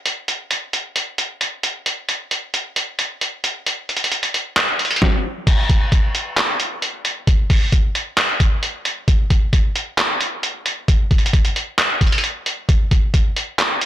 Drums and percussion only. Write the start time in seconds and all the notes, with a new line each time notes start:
0.06 closed hi-hat
0.28 closed hi-hat
0.51 closed hi-hat
0.73 closed hi-hat
0.96 closed hi-hat
1.18 closed hi-hat
1.41 closed hi-hat
1.63 closed hi-hat
1.86 closed hi-hat
2.09 closed hi-hat
2.31 closed hi-hat
2.54 closed hi-hat
2.76 closed hi-hat
2.99 closed hi-hat
3.21 closed hi-hat
3.44 closed hi-hat
3.66 closed hi-hat
3.89 closed hi-hat
3.97 closed hi-hat
4.04 closed hi-hat
4.12 closed hi-hat
4.23 closed hi-hat
4.34 closed hi-hat
4.57 clap, closed hi-hat
4.79 closed hi-hat
4.85 closed hi-hat
4.91 closed hi-hat
4.96 closed hi-hat
5.02 kick, snare
5.47 kick, closed hi-hat, crash
5.70 kick, closed hi-hat
5.92 kick, closed hi-hat
6.15 closed hi-hat
6.37 clap, closed hi-hat
6.60 closed hi-hat
6.82 closed hi-hat
7.05 closed hi-hat
7.27 kick, closed hi-hat
7.50 kick, open hi-hat
7.72 kick, closed hi-hat
7.95 closed hi-hat
8.18 clap, closed hi-hat
8.40 kick, closed hi-hat
8.63 closed hi-hat
8.85 closed hi-hat
9.08 kick, closed hi-hat
9.30 kick, closed hi-hat
9.53 kick, closed hi-hat
9.76 closed hi-hat
9.98 clap, closed hi-hat
10.21 closed hi-hat
10.43 closed hi-hat
10.66 closed hi-hat
10.88 kick, closed hi-hat
11.11 kick, closed hi-hat
11.18 closed hi-hat
11.26 closed hi-hat
11.33 kick, closed hi-hat
11.45 closed hi-hat
11.56 closed hi-hat
11.79 clap, closed hi-hat
12.01 kick, closed hi-hat
12.07 closed hi-hat
12.12 closed hi-hat
12.18 closed hi-hat
12.24 closed hi-hat
12.46 closed hi-hat
12.69 kick, closed hi-hat
12.91 kick, closed hi-hat
13.14 kick, closed hi-hat
13.36 closed hi-hat
13.59 clap, closed hi-hat
13.81 closed hi-hat